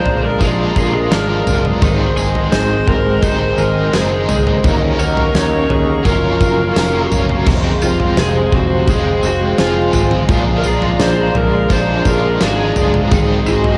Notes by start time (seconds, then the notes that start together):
Already playing: F3 G#3 D4 F4 G#4 C5 D5 F5 A#5
0.05 A#1 D4, floor tom
0.24 G#3 A#4
0.39 A#1 F3 G#3 D4 G#4, kick, tambourine
0.44 F4
0.59 D4
0.76 A#1 F4 A#4, kick, tambourine
0.94 G#3 G#4
1.10 G#1 F3 G#3 D4 A#4, snare, tambourine
1.15 F4
1.29 G#3
1.46 F#1 D4, floor tom, tambourine
1.65 G#3, floor tom
1.79 G#1 G#2 D#3 G#3 C5 D#5 C6, kick, floor tom, tambourine
1.84 C4 D#4 G#4
2.00 C4
2.17 G#1 G#4, tambourine
2.35 G#3, floor tom
2.51 G#1 C4 C5, snare, tambourine
2.71 G#3
2.87 G#1 C4 A#4, kick, floor tom
3.06 G#3
3.21 G#1 D#3 G#3 C4 D#4 A#4 C5, kick, floor tom, tambourine
3.26 G#4
3.41 C4
3.58 G#1 G#4 A#4, tambourine
3.76 G#3
3.91 F#1 G#3 C4 D#4 G#4, snare, tambourine
3.96 G#4
4.11 G#3
4.28 C#2 C4, floor tom, tambourine
4.47 G#3, floor tom
4.62 D#2 D#3 F#3 A#3 C#4 D#4 A#4 A#5 C#6, kick, floor tom, tambourine
4.82 C#4
4.97 D#2 D#4 F#4 A#4, tambourine
5.03 C#4
5.17 A#3, floor tom
5.34 D#2 C#4 C#5, snare, tambourine
5.52 A#3
5.69 D#2 C#4 G#4, floor tom
5.88 A#3
6.03 F#1 F3 F#3 C#4 F4 A#4 F5, kick, floor tom, tambourine
6.08 A#4
6.23 C#4
6.41 F#1 F4, kick, tambourine
6.58 A#3
6.74 F1 F#3 C#4 F4, snare, tambourine
6.79 A#4
6.94 A#3
7.11 F#1 C#4, floor tom, tambourine
7.29 A#3, floor tom
7.44 F1 F2 C3 G#4 C5 F5 C6, kick, floor tom, crash, tambourine
7.50 G#3 C4
7.64 C4
7.82 F1 F4 C5, tambourine
8.00 G#3, floor tom
8.17 F1 C4 G#4, snare, tambourine
8.34 G#3
8.52 F1 C4 F#4, kick, floor tom
8.70 G#3
8.88 F1 G#3 C4 G#4, kick, floor tom, tambourine
9.06 C4
9.23 F1 F#4, tambourine
9.41 G#3
9.57 F1 F3 G#3 C4 F4 G#5, snare, tambourine
9.62 F4
9.76 G#3
9.81 C6
9.93 G#1 C4, floor tom, tambourine
10.11 G#3, floor tom
10.28 A#1 A#2 F3 G#3 D4 D5 A#5, kick, floor tom, tambourine
10.32 F4
10.47 D4
10.58 A#4
10.63 A#1 D4 F4 G#4, tambourine
10.68 G#3
10.82 G#3, floor tom
10.99 A#1 D4 C5, snare, tambourine
11.18 G#3
11.35 A#1 D4 A#4, floor tom
11.53 G#3
11.69 A#1 F3 G#3 D4 C5, kick, tambourine
11.73 F4
11.89 D4
12.04 A#1 F4 A#4 F5, kick, tambourine
12.24 G#3
12.39 G#1 F3 G#3 D4 G#4, snare, tambourine
12.45 F4 F#4
12.56 G#3 G#4
12.76 F#1 D4, floor tom, tambourine
12.94 G#3, floor tom
13.09 G#1 G#2 D#3 G#3 C5 D#5 C6, kick, floor tom, tambourine
13.14 C4 D#4 G#4
13.30 C4
13.46 G#1 F#4 G#4 C5, tambourine
13.64 G#3, floor tom